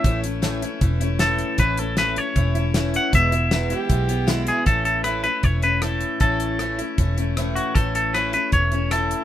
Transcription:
<<
  \new Staff \with { instrumentName = "Clean electric guitar" } { \time 4/4 \key a \major \tempo 4 = 156 e''8 r2 r8 a'4 | b'8 a'8 b'8 cis''2 fis''8 | e''2.~ e''8 gis'8 | a'8 a'8 b'8 b'8 cis''8 b'8 a'4 |
a'2. r8 fis'8 | a'8 a'8 b'8 b'8 cis''4 a'4 | }
  \new Staff \with { instrumentName = "Fiddle" } { \time 4/4 \key a \major r1 | r1 | r4. g'4. e'8. r16 | r1 |
r1 | r1 | }
  \new Staff \with { instrumentName = "Steel-string acoustic guitar" } { \time 4/4 \key a \major <a, e a cis' e'>8 <a cis' e'>8 <a, e a cis' e'>8 <a cis' e'>8 <e a cis' e'>8 <a cis' e'>8 <a, e a cis' e'>4 | <a, e a cis' e'>8 <a cis' e'>8 <a, e a cis' e'>8 <a cis' e'>8 <e a cis' e'>8 <a cis' e'>8 <a, e a cis' e'>4 | <e, b, e gis b e'>8 <e gis b e'>8 <e, b, e gis b e'>8 <e gis b e'>8 <e gis b e'>8 <e gis b e'>8 <e, b, e gis b e'>4 | <a, e a cis' e'>4 <a, e a cis' e'>8 <a cis' e'>8 <e a cis' e'>8 <a cis' e'>8 <a, e a cis' e'>4 |
<a, e a cis' e'>4 <a, e a cis' e'>8 <a cis' e'>8 <e a cis' e'>8 <a cis' e'>8 <a, e a cis' e'>4 | <a, e a cis' e'>4 <a, e a cis' e'>8 <a cis' e'>8 <e a cis'>8 <a cis' e'>8 <a, e a cis' e'>4 | }
  \new Staff \with { instrumentName = "Fingered electric bass" } { \clef bass \time 4/4 \key a \major a,,2 e,,2 | a,,2 e,,2 | e,,2 b,,2 | a,,2 e,,2 |
a,,2 e,,2 | a,,2 e,,2 | }
  \new DrumStaff \with { instrumentName = "Drums" } \drummode { \time 4/4 <hh bd>8 hh8 <hh sn>8 hh8 <hh bd>8 hh8 <hh sn>8 hh8 | <hh bd>8 hh8 <hh sn>8 hh8 <hh bd>8 hh8 <hh sn>8 hh8 | <hh bd>8 hh8 <hh sn>8 hh8 <hh bd>8 hh8 <hh sn>8 hh8 | <hh bd>8 hh8 <hh ss>8 hh8 <hh bd>8 hh8 <hh ss>8 hh8 |
<hh bd>8 hh8 <hh ss>8 hh8 <hh bd>8 hh8 <hh ss>8 hh8 | <hh bd>8 hh8 <hh ss>8 hh8 <hh bd>8 hh8 <hh ss>8 hh8 | }
>>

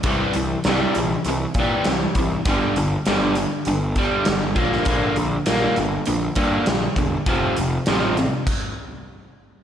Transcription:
<<
  \new Staff \with { instrumentName = "Overdriven electric guitar" } { \clef bass \time 4/4 \key bes \lydian \tempo 4 = 100 <c e g>8 <c e>8 <c e g>8 <c e>8 <c e>8 <c e g>8 <c e>8 <c e>8 | <g, d g>8 <g, d>8 <g, d g>8 <g, d>8 <g, d>8 <g, d g>8 <g, d>8 <bes, d bes>8 | <bes, d bes>8 <bes, d>8 <bes, d bes>8 <bes, d>8 <bes, d>8 <bes, d bes>8 <bes, d>8 <bes, d>8 | <f, c f>8 <f, c>8 <f, c f>8 <f, c>8 r2 | }
  \new Staff \with { instrumentName = "Picked electric bass" } { \clef bass \time 4/4 \key bes \lydian c,8 c,8 c,8 bes,,8 c,8 bes,8 c,8 c,8 | g,,8 g,,8 g,,4 g,,4 g,,8 bes,,8 | bes,,8 bes,,8 bes,,8 g,,8 bes,,8 g,8 bes,,8 e,,8 | f,,8 f,,8 a,,4 r2 | }
  \new DrumStaff \with { instrumentName = "Drums" } \drummode { \time 4/4 <hh bd>8 hh8 <hh sn>8 hh8 hh8 <hh bd>8 <hh sn>8 <hh bd>8 | <hh bd>8 hh8 <hh sn>8 hh8 hh8 <hh bd>8 <hh sn>8 <hh bd>16 sn16 | <hh bd>8 hh8 <hh sn>8 hh8 hh8 <hh bd>8 <hh sn>8 <hh bd>8 | <hh bd>8 hh8 <hh sn>8 hh8 <cymc bd>4 r4 | }
>>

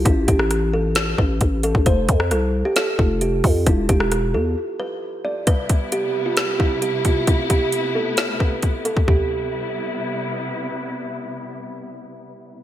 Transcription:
<<
  \new Staff \with { instrumentName = "Kalimba" } { \time 4/4 \key c \major \tempo 4 = 133 e'8 g'4 a'4 b'4 a'8 | c''4 a'8. g'16 a'8 f'8 g'8 f'8 | e'8 g'4 a'4 b'4 d''8 | b'4 g'8. f'16 g'8 e'8 g'8 f'8 |
e'8 g'4 a'4 b'4 a'8 | g'2. r4 | r1 | }
  \new Staff \with { instrumentName = "String section" } { \time 4/4 \key c \major << { r1 | r1 | r1 | <c e'>1~ |
<c e'>1 | <c g b e'>1~ | <c g b e'>1 | } \\ { r1 | r1 | r1 | <g b>1 |
<a b>1 | r1 | r1 | } >> }
  \new Staff \with { instrumentName = "808-style bass" } { \clef bass \time 4/4 \key c \major a,,8 a,,2 a,,8 a,,8. a,,16 | f,,8 f,8 c,8. r8. f,,4 f,8 | e,,8 e,,4 e,8 r2 | r1 |
r1 | r1 | r1 | }
  \new DrumStaff \with { instrumentName = "Drums" } \drummode { \time 4/4 <hh bd>8 <hh bd>16 ss16 <hh ss>4 <hh sn>8 bd8 <hh bd>8 hh16 bd16 | <hh bd>8 <hh bd>16 ss16 <hh ss>4 <hh sn>8 bd8 hh8 <hho bd>8 | <hh bd>8 <hh bd>16 ss16 <hh ss>4 r4 r4 | <hh bd>8 <hh bd>8 hh4 <hh sn>8 bd8 hh8 <hh bd>8 |
<hh bd>8 <hh bd>8 hh4 <hh sn>8 bd8 <hh bd>8 hh16 bd16 | <bd tomfh>4 r4 r4 r4 | r4 r4 r4 r4 | }
>>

